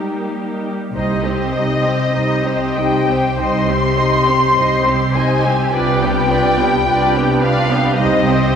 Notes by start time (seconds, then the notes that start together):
Already playing: G3 A#3 D#4 G4 A#4
0.95 C2 C3 G3 D#4 C5 D#5
1.25 C4 G4 C5
1.54 G3 D#4 C5 D#5
1.84 C4 G4 C5
2.14 C2 C3 G3 D#4 C5 D#5
2.45 C4 G4 C5
2.75 G3 D#4 C5 D#5 G5
3.08 C4 G4 C5
3.37 C2 C3 G3 D#4 C5 D#5 C6
3.68 C4 G4 C5
3.97 G3 D#4 C5 D#5
4.26 C4 G4 C5
4.55 C2 C3 G3 D#4 C5 D#5
4.85 C4 G4 C5
5.14 G3 D#4 C5 D#5 G#5
5.43 C4 G4 C5
5.72 C2 C3 D4 F4 B4 D5 G5
6.01 B3 D4 G4 B4
6.30 D4 F4 B4 D5
6.58 B3 D4 G4 B4
6.86 C2 C3 D4 F4 B4 D5
7.15 B3 D4 G4 B4
7.42 D4 F4 B4 D5 F5
7.70 B3 D4 G4 B4
7.98 C2 C3 G3 D#4 C5 D#5
8.26 C4 G4 C5